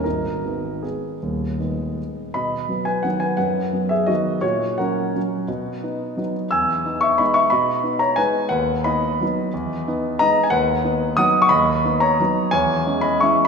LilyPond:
<<
  \new Staff \with { instrumentName = "Grand piano" } { \time 3/4 \key gis \minor \tempo 4 = 175 <dis' ais'>2 <b gis'>4~ | <b gis'>2 r4 | \key b \major <dis'' b''>4. <b' gis''>8 <b' fis''>8 <b' gis''>8 | <b' fis''>4. <gis' e''>8 <fis' dis''>4 |
<fis' cis''>4 <ais' fis''>2~ | <ais' fis''>2~ <ais' fis''>8 r8 | <gis'' e'''>4. <e'' cis'''>8 <dis'' b''>8 <e'' cis'''>8 | <dis'' b''>4. <cis'' ais''>8 <b' gis''>4 |
<b' fis''>4 <dis'' b''>2~ | <dis'' b''>2 <dis'' ais''>8. gis''16 | <b' fis''>2 <fis'' dis'''>8. cis'''16 | <dis'' b''>4. <cis'' ais''>4. |
<cis'' gis''>4. <dis'' b''>8 <e'' cis'''>8. b''16 | }
  \new Staff \with { instrumentName = "Grand piano" } { \time 3/4 \key gis \minor <gis,, gis,>4 <dis gis b>2 | <dis,, dis,>4 <dis gis b>2 | \key b \major b,4 <fis b>4 <dis fis b>4 | fis,4 <fis b>4 <dis fis b>4 |
ais,4 <fis cis'>4 <fis cis'>4 | b,4 <b dis'>4 <fis b dis'>4 | e,4 <b dis'>4 <gis b dis'>4 | b,4 <b dis'>4 <gis b dis'>4 |
dis,4 <b dis'>4 <fis b dis'>4 | e,4 <b dis'>4 <gis b dis'>4 | dis,4 <b dis'>4 <fis b dis'>4 | dis,4 <b dis'>4 <fis b dis'>4 |
e,4 <gis cis'>4 <e gis cis'>4 | }
>>